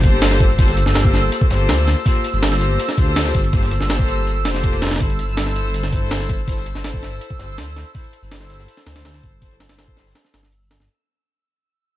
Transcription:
Already playing: G1 E6
0.03 A#3 F4 G4 A4 C5, kick, closed hi-hat
0.22 snare, closed hi-hat
0.31 snare
0.40 kick, closed hi-hat
0.49 closed hi-hat
0.58 A#3 F4 G4 A4 C5, kick, closed hi-hat
0.68 snare, closed hi-hat
0.77 closed hi-hat
0.86 G1 A#3 F4 G4 A4 C5, snare
0.94 snare, closed hi-hat
1.05 kick
1.14 snare, closed hi-hat
1.32 closed hi-hat
1.41 kick
1.51 G1 A#3 F4 G4 A4 C5, snare, closed hi-hat
1.69 D2, snare, closed hi-hat, open hi-hat
1.88 snare, closed hi-hat
2.06 A#3 F4 G4 A4 C5, kick, closed hi-hat
2.15 closed hi-hat
2.24 closed hi-hat
2.33 G1 A#3 F4 G4 A4 C5, closed hi-hat
2.42 snare, closed hi-hat
2.51 snare, closed hi-hat
2.61 closed hi-hat
2.79 closed hi-hat
2.89 snare
2.98 D2 A#3 F4 G4 A4 C5, kick, closed hi-hat
3.16 snare, closed hi-hat
3.25 snare
3.35 G1, kick, closed hi-hat
3.44 closed hi-hat
3.53 A#3 F4 G4 A4 C5, kick, closed hi-hat
3.62 snare, closed hi-hat
3.71 closed hi-hat
3.80 G1 A#3 F4 G4 A4 C5, snare
3.90 snare, closed hi-hat
3.99 kick
4.08 closed hi-hat
4.27 closed hi-hat
4.45 F1 A#3 F4 G4 A4 C5, snare, closed hi-hat
4.54 snare, closed hi-hat
4.64 kick, closed hi-hat
4.73 closed hi-hat
4.82 snare, closed hi-hat
4.87 snare, closed hi-hat
4.91 F1, snare, closed hi-hat
4.96 snare, closed hi-hat
5.00 G1 E4 A4 C5, kick, closed hi-hat
5.10 closed hi-hat
5.19 closed hi-hat
5.28 E4 A4 C5, closed hi-hat
5.37 snare, closed hi-hat
5.47 snare, closed hi-hat
5.56 closed hi-hat
5.74 closed hi-hat
5.83 snare
5.92 E4 A4 C5, kick, closed hi-hat
6.11 snare, closed hi-hat
6.20 snare
6.29 kick, closed hi-hat
6.38 closed hi-hat
6.48 E4 A4 C5, kick, closed hi-hat
6.57 snare, closed hi-hat
6.66 closed hi-hat
6.75 G1 E4 A4 C5, snare
6.84 snare, closed hi-hat
6.94 kick
7.03 snare, closed hi-hat
7.21 closed hi-hat
7.30 kick
7.39 G1 E4 A4 C5, snare, closed hi-hat
7.58 D2, snare, closed hi-hat, open hi-hat
7.76 snare, closed hi-hat
7.95 E4 A4 C5, kick, closed hi-hat
8.04 closed hi-hat
8.12 closed hi-hat
8.22 G1 E4 A4 C5, closed hi-hat
8.32 snare, closed hi-hat
8.41 snare, closed hi-hat
8.50 snare, closed hi-hat
8.59 snare, closed hi-hat
8.68 closed hi-hat
8.77 snare
8.87 D2 E4 A4 C5, snare, closed hi-hat
8.96 snare, closed hi-hat
9.05 snare, closed hi-hat
9.14 snare
9.23 G1, kick, closed hi-hat
9.42 E4 A4 C5, kick, closed hi-hat
9.51 snare, closed hi-hat
9.60 snare, closed hi-hat
9.69 G1 E4 A4 C5, snare, closed hi-hat
9.79 snare, closed hi-hat
9.88 kick
9.96 snare, closed hi-hat
10.07 snare, closed hi-hat
10.11 snare, closed hi-hat
10.15 snare, closed hi-hat
10.25 snare, closed hi-hat
10.34 G1, snare, closed hi-hat
10.43 snare
10.52 closed hi-hat, open hi-hat
10.71 snare, closed hi-hat
10.80 G1, snare

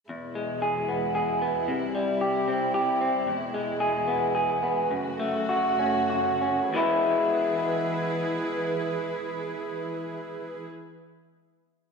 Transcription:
0.09 E2 B2 G#3 E4
0.35 G#3
0.62 G#4
0.88 B3
1.15 G#4
1.42 B3
1.68 C2 C3 G3
1.95 G3
2.21 G4
2.48 C4
2.74 G4
3.01 C4
3.27 E2 B2 G#3
3.54 G#3
3.80 G#4
4.08 B3
4.35 G#4
4.63 B3
4.91 F#2 C#3 A3 F#4
5.20 A3
5.49 F#4
5.79 C#4
6.10 F#4
6.41 C#4
6.73 E2 B2 E3 G#3 B3 E4 G#4 B4

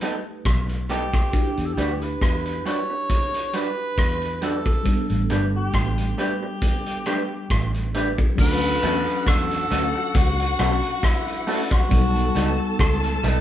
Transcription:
Already playing: A3 D#4 G4 B4
0.01 G3 B3 D#4 A4, closed hi-hat
0.45 B1, kick, cross-stick, closed hi-hat
0.69 closed hi-hat
0.89 G3 B3 D#4 G4 A4, closed hi-hat
1.14 kick, cross-stick
1.31 D4 E4 F#4, kick, closed hi-hat
1.37 F#4
1.43 G4
1.57 E2, closed hi-hat
1.66 A4
1.74 D2 G3 G4
1.78 D4 F#4 B4, closed hi-hat
1.83 F#4
1.92 G4
2.01 B4, closed hi-hat
2.21 E2, kick, cross-stick, closed hi-hat
2.45 closed hi-hat
2.65 G3 D4 F#4 B4 C#5, closed hi-hat
2.90 muted clean electric guitar stroke
3.10 kick, closed hi-hat
3.34 closed hi-hat
3.53 G3 D4 F#4 B4, closed hi-hat
3.98 E2, kick, cross-stick, closed hi-hat
4.22 closed hi-hat
4.42 G3 D4 F#4 A4 B4, closed hi-hat
4.66 kick, closed hi-hat
4.83 G3 B3, kick, closed hi-hat
4.87 D4 A4
5.10 A1, closed hi-hat
5.30 G1 A3 D4 G4 B4, closed hi-hat
5.56 G4
5.74 A1, kick, cross-stick, closed hi-hat
5.98 closed hi-hat
6.18 A3 D4 G4 B4, closed hi-hat
6.43 muted clean electric guitar stroke
6.62 kick, closed hi-hat
6.86 closed hi-hat
7.06 A3 D4 G4 B4, cross-stick, closed hi-hat
7.50 A1, kick, cross-stick, closed hi-hat
7.74 closed hi-hat
7.94 A3 D4 G4 B4, closed hi-hat
8.18 kick
8.35 D2 F#3 C#4 D4 F#4 F#5, kick, crash
8.41 A4 B4
8.62 closed hi-hat
8.83 E2 A3 C#4 F#4 A4, closed hi-hat
9.06 closed hi-hat
9.27 E2 A4, kick, cross-stick, closed hi-hat
9.51 closed hi-hat
9.71 D2 A3 C#4 F#4 A4, closed hi-hat
9.95 muted clean electric guitar stroke
10.15 C#2 F#4, kick, closed hi-hat
10.39 closed hi-hat
10.59 B1 A3 C#4 F#4 A4, cross-stick, closed hi-hat
10.83 closed hi-hat
11.03 E4, kick, cross-stick, closed hi-hat
11.28 closed hi-hat
11.47 A3 C#4 F#4 A4, open hi-hat
11.71 F#4, kick, cross-stick, closed hi-hat
11.88 B1 G3 B3 A4 A5, kick, closed hi-hat
11.93 D#4 A4
12.16 closed hi-hat
12.35 C#2 G3 B3 D#4 A4, closed hi-hat
12.79 C#2, kick, cross-stick, closed hi-hat
13.04 closed hi-hat
13.23 B1 G3 B3 D#4 A4, closed hi-hat

